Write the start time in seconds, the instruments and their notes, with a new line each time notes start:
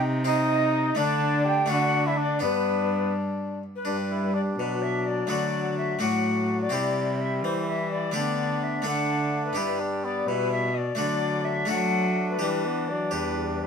Already playing: harpsichord C3 C4 D#4, cello C3, trombone D#4
0.25 harpsichord C4 D#4, trombone D#4, cor anglais D#4, recorder D#5
0.95 cello D3, harpsichord D3 A3 D4, trombone D4, cor anglais D4, recorder D5
1.45 cor anglais G4, recorder G5
1.66 cello D3, harpsichord A3 D4, trombone D4, recorder F#5
1.70 harpsichord D3, cor anglais F#4
2.06 cor anglais E4, recorder E5
2.17 cor anglais D4, recorder D5
2.39 cello G2, harpsichord G2 B3 D4, cor anglais B3, trombone D4, recorder B4
3.75 recorder B4
3.85 cello G2, harpsichord G2 D4, trombone G3, cor anglais D4
4.10 cor anglais E4
4.34 cor anglais D4, recorder D5
4.58 cello B2, harpsichord B2, trombone F#3, recorder B4
4.82 recorder E5
5.05 recorder D5
5.27 cello D3, harpsichord D3 A3 D4 F#4, cor anglais F#4, recorder D5
5.77 recorder E5
5.99 cello A2, harpsichord A2 A3 D4 F#4, trombone F#3, cor anglais F#4, recorder F#5
6.60 recorder D5
6.69 cello C3, harpsichord C3 C4 E4 G4, trombone G3, cor anglais E4
7.20 recorder E5
7.43 cello E3, harpsichord E3, recorder C5
7.67 recorder E5
7.91 recorder D5
8.11 cello D3, harpsichord A3 D4 G4, recorder D5
8.15 harpsichord D3, trombone B3, cor anglais D4
8.63 recorder E5
8.82 cello D3, harpsichord D3 A3 D4 A4
8.86 trombone A3, cor anglais D4, recorder F#5
9.45 recorder B4
9.53 cello G2, harpsichord B3 D4 G4
9.57 harpsichord G2, trombone G3, cor anglais E4
9.80 cor anglais D4
10.03 cor anglais B3, recorder D5
10.26 cello B2, harpsichord B2, cor anglais E4, recorder B4
10.51 recorder E5
10.73 recorder D5 D#5
10.95 cello D3, harpsichord D3 A3 D4 F#4, trombone F#3, cor anglais D4, recorder D5
11.44 recorder E5
11.65 harpsichord F#3 A3 D4 F#4, trombone A3, cor anglais D4, recorder F#5
11.70 cello F#3
12.29 recorder B4
12.39 cello E3, harpsichord E3 G4, trombone G3
12.66 trombone B3
12.88 trombone F#3, recorder D5
13.11 cello E2, harpsichord E2 G4, trombone G3, recorder B4
13.60 recorder B4